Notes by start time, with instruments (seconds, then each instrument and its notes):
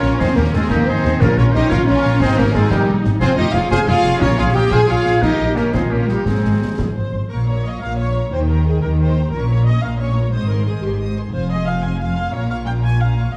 Already playing: french horn section C#4, cello section C#4, violin section C#4 C#5, viola section C#4, trumpet section F4, oboe A#4, flute C#5
0.02 double bass section A#1, snare
0.18 double bass section D#2, french horn section C4, violin section C4 C5, cello section C4, trumpet section D#4, oboe G#4, flute C5, concert bass drum, snare
0.34 double bass section D#2, french horn section A#3, violin section A#3 A#4, cello section A#3, trumpet section C#4, oboe G4, flute A#4
0.53 double bass section D#2, violin section G#3 G#4, cello section G#3, french horn section G#3, trumpet section C4, oboe F4, flute G#4
0.69 double bass section D#2, violin section A#3 A#4, french horn section A#3, cello section A#3, trumpet section D#4, viola section D#4, oboe G4, flute A#4, concert bass drum, snare
0.86 double bass section D#2, violin section C4 C5, cello section C4, french horn section C4, trumpet section D#4, oboe G#4, flute C5
1.04 double bass section D#2, snare
1.20 double bass section A#1, timpani A#2, violin section A#3 A#4, french horn section A#3, cello section A#3, trumpet section C#4, viola section C#4, oboe F4, flute A#4, concert bass drum, snare
1.36 double bass section A#1, french horn section C#4, violin section C#4 C#5, cello section C#4, trumpet section F4, oboe A#4, flute C#5
1.52 double bass section A#1, french horn section D#4, violin section D#4 D#5, cello section D#4, trumpet section G4, oboe C5, flute D#5, snare
1.70 double bass section A#1, violin section F4 F5, french horn section F4, cello section F4, trumpet section A#4, oboe C#5, flute F5, concert bass drum, snare
1.87 double bass section A#1, violin section C#4 C#5, french horn section C#4, cello section C#4, trumpet section F4, oboe A#4, flute C#5
2.05 double bass section A#1, snare
2.20 double bass section G#1, violin section C4 C5, french horn section C4, cello section C4, trumpet section D#4, viola section D#4, oboe G#4, flute C5, concert bass drum, snare
2.36 double bass section G#1, violin section A#3 A#4, french horn section A#3, cello section A#3, trumpet section C#4, oboe G4, flute A#4
2.53 double bass section G#1, french horn section G#3, cello section G#3, violin section G#3 G#4, trumpet section C4, oboe F4, flute G#4
2.69 double bass section G#1, violin section G3 G4, cello section G3, trumpet section A#3, oboe D#4, flute G4, concert bass drum, snare
2.73 french horn section G3
2.88 double bass section G#1
3.04 double bass section G#1, snare
3.20 double bass section F1, violin section C4 C5, french horn section C4, cello section C4, trumpet section F4, viola section F4, oboe G#4, flute C5, concert bass drum, snare, crash
3.37 double bass section F1, cello section D#4, violin section D#4 D#5, french horn section D#4, trumpet section G4, oboe C5, flute D#5
3.54 double bass section F1, cello section F4, violin section F4 F5, trumpet section G#4, oboe C#5, flute F5, snare
3.58 french horn section F4
3.70 double bass section F1, viola section C3, violin section G#4 G#5, cello section G#4, trumpet section C5, oboe F5, flute G#5, concert bass drum, snare
3.75 french horn section G#4
3.86 double bass section F1, violin section F4 F5, cello section F4, french horn section F4, trumpet section G#4, oboe C#5, flute F5
4.04 double bass section F1, snare
4.20 double bass section A#1, violin section C#4 C#5, cello section C#4, viola section C#4, trumpet section F4, oboe A#4, flute C#5, concert bass drum, snare
4.25 french horn section C#4
4.38 double bass section A#1, violin section F4 F5, cello section F4, french horn section F4, trumpet section G#4, oboe C#5, flute F5
4.54 double bass section A#1, violin section G4 G5, cello section G4, french horn section G4, trumpet section A#4, oboe D#5, flute G5
4.70 double bass section A#1, viola section F4, violin section G#4 G#5, cello section G#4, french horn section G#4, trumpet section C5, oboe F5, flute G#5, concert bass drum, snare
4.88 double bass section A#1, violin section F4 F5, cello section F4, french horn section F4, trumpet section G#4, oboe C#5, flute F5
5.06 double bass section A#1, snare
5.21 double bass section A#1, cello section D#4, french horn section D#4, violin section D#4 D#5, viola section G4, trumpet section G4, oboe A#4, flute D#5, concert bass drum, snare
5.40 double bass section A#1
5.56 double bass section A#1, cello section A#3, french horn section A#3, violin section A#3 A#4, trumpet section C#4, oboe G4, flute A#4, snare
5.72 double bass section A#1, cello section C4, violin section C4 C5, french horn section C4, trumpet section D#4, viola section F4, oboe G#4, flute C5, concert bass drum, snare
5.90 double bass section A#1, cello section A#3, violin section A#3 A#4, french horn section A#3, trumpet section C#4, oboe G4, flute A#4
6.07 double bass section A#1, violin section G3 G4, cello section G3, french horn section G3, trumpet section A#3, oboe D#4, flute G4, snare
6.24 double bass section G#1, cello section G#3, violin section G#3 G#4, french horn section G#3, trumpet section C4, viola section C4, oboe D#4, flute G#4, concert bass drum, snare
6.45 double bass section G#1
6.62 double bass section G#1
6.78 double bass section G#1, viola section G#4, concert bass drum, snare
6.96 double bass section G#1, viola section C5
7.13 double bass section G#1
7.29 double bass section A#1, cello section A#2, viola section A#4, violin section F5 C#6
7.34 violin section C#5
7.47 violin section A#4 C#5 A#5, viola section C#5
7.65 violin section C#5 F5 C#6, viola section D#5
7.82 double bass section A#1, cello section A#2, violin section A#4 C#5 A#5, viola section F5
7.99 viola section C#5, violin section C#5 F5 C#6
8.14 violin section A#4 C#5 A#5
8.32 double bass section D#2, cello section D#3, violin section A#4 D#5 G5, viola section C5
8.48 violin section G4 G5 A#5, viola section A#4
8.65 viola section G#4, violin section A#4 D#5 G5
8.82 double bass section D#2, cello section D#3, violin section G4 G5 A#5, viola section A#4
8.99 violin section A#4 D#5 G5, viola section C5
9.18 violin section G4 G5 A#5
9.32 double bass section A#1, cello section A#2, violin section C#4 C#5, viola section A#4
9.37 violin section C#6
9.49 violin section F4 A#4 A#5, viola section C#5
9.66 violin section C#4 C#5 C#6, viola section D#5
9.83 double bass section A#1, cello section A#2, violin section F4 A#4 A#5, viola section F5
9.99 violin section C#4 C#5 C#6, viola section C#5
10.18 violin section F4 A#4 A#5
10.33 double bass section G#1, cello section G#2, viola section C5, violin section C5 D#5 D#6
10.50 violin section G#4 C5 C6, viola section A#4
10.67 viola section G#4, violin section C5 D#5 D#6
10.83 double bass section G#1, cello section G#2, viola section G4, violin section G#4 C5 C6
11.01 violin section C5 D#5 D#6
11.18 violin section G#4 C5 C6
11.33 double bass section F1, cello section F2, violin section F4 F5 G#5, viola section C5
11.51 violin section G#4 G#5 C6, viola section D#5
11.67 violin section F4 F5 G#5, viola section F5
11.83 violin section G#4 G#5 C6, viola section G#5
11.99 violin section F4 F5 G#5, viola section F5
12.16 violin section G#4 G#5 C6
12.32 double bass section A#1, cello section A#2, violin section C#4 F5 A#5, viola section C#5
12.50 violin section F4 C#5 C#6, viola section F5
12.66 violin section C#4 F5 A#5, viola section G5
12.84 violin section F4 C#5 C#6, viola section G#5
13.00 violin section C#4 F5 A#5, viola section F5
13.18 violin section F4 C#5 C#6